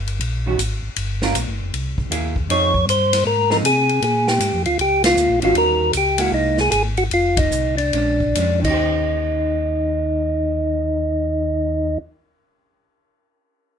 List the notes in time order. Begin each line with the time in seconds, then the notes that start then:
Already playing: G1
0.07 ride
0.20 A#1, ride
0.46 D#3 G3 C#4 F#4
0.58 G#1, hi-hat pedal, ride
0.83 G#1
0.96 G1, ride
1.22 G3 C#4 F4 A#4, snare
1.34 A#1, hi-hat pedal, ride
1.48 G1
1.60 F1
1.74 C2, ride
1.98 C2, kick
2.10 D#2 A#3 E4 G#4, hi-hat pedal, ride
2.36 kick
2.49 F2 F3 C4 D#4 G#4 C#5, ride
2.74 kick
2.87 G2 C5, hi-hat pedal, ride
3.13 snare, ride
3.25 G#2 A#4
3.50 F3 C4 D#4 G#4 A#4, snare
3.63 C3 G#4, hi-hat pedal, ride
3.89 ride
4.02 A#2 G#4, ride
4.28 G4, snare
4.40 G#2, hi-hat pedal, ride
4.54 F2
4.66 D2 F4, ride
4.79 C#2 G4, ride
5.04 F4, snare, ride
5.16 D2, hi-hat pedal
5.29 A#1
5.41 G#1 D#3 G3 C#4 F4 F#4, ride
5.54 D#2 A#4, ride
5.93 C#2, hi-hat pedal, ride
5.97 G4
6.18 G#3 A#3 E4 F#4, ride
6.32 C2 D#4
6.57 G#4, snare
6.71 G#1 G#4, hi-hat pedal, ride
6.97 F#4, ride
7.11 F1 F4, ride
7.37 D#4, kick, ride
7.51 C2, hi-hat pedal
7.77 D4, ride
7.93 A#1 G#3 C#4 D4, ride
8.20 kick
8.35 F2 G#3 C#4 D4, hi-hat pedal, ride
8.61 D#2 D#3 D#4, kick, crash
8.66 C#4
8.70 G4 C5